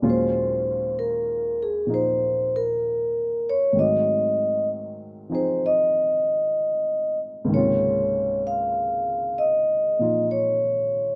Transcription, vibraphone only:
X:1
M:4/4
L:1/8
Q:"Swing" 1/4=64
K:Abmix
V:1 name="Vibraphone"
c2 B A c B2 d | e2 z c e3 z | d2 f2 e2 d2 |]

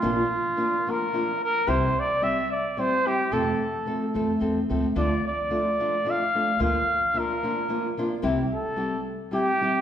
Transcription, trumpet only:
X:1
M:3/4
L:1/8
Q:"Swing" 1/4=110
K:Bblyd
V:1 name="Trumpet"
F3 B2 B | c d e d c G | A4 z2 | d d3 f2 |
f2 B3 z | z A2 z G2 |]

